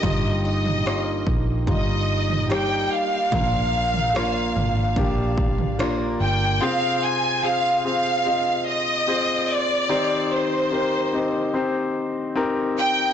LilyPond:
<<
  \new Staff \with { instrumentName = "Violin section" } { \time 4/4 \key f \dorian \tempo 4 = 73 ees''8 ees''4 r8 ees''4 g''8 f''8~ | f''2. r8 g''8 | f''8 aes''8 f''8 f''4 ees''4 d''8~ | d''8 c''4. r4. g''8 | }
  \new Staff \with { instrumentName = "Grand piano" } { \time 4/4 \key f \dorian <g ees' f'>4 <g ees' f'>4 <g ees' f'>4 <g ees' g'>4 | <bes d' f'>4 <bes d' f'>4 <bes d' g'>4 <bes d' f'>4 | <c' f' aes' c''>4 <c' f' aes' c''>8 <c' f' aes' c''>8 <c' f' aes' ees''>4 <c' f' aes' c''>4 | <c' ees' g' c''>4 <c' ees' g' bes'>8 <c' ees' g' ees''>8 <c' ees' g' c''>4 <c' ees' g' bes'>4 | }
  \new Staff \with { instrumentName = "Grand piano" } { \clef bass \time 4/4 \key f \dorian g,4. r2 r8 | <bes, f>4. r2 r8 | c4. r2 r8 | ees4. r2 r8 | }
  \new Staff \with { instrumentName = "Steel-string acoustic guitar" } { \time 4/4 \key f \dorian <g, g'>8 ees'8 bes4 ees'4 <bes ees' g'>4 | <bes, bes'>8 d'8 bes4 d'4 <bes d' bes'>4 | r1 | r1 | }
  \new Staff \with { instrumentName = "Fingered electric bass" } { \clef bass \time 4/4 \key f \dorian g,,4. bes,,8 g,,4. r8 | bes,,4. aes,,8 bes,,4. g,,8 | r1 | r1 | }
  \new DrumStaff \with { instrumentName = "Drums" } \drummode { \time 4/4 <bd tomfh>8. tomfh16 ss8 bd8 <bd tomfh>8. tomfh16 ss4 | <bd tomfh>8. tomfh16 ss8 tomfh8 <bd tomfh>8 bd16 tomfh16 ss4 | r4 r4 r4 r4 | r4 r4 r4 r4 | }
>>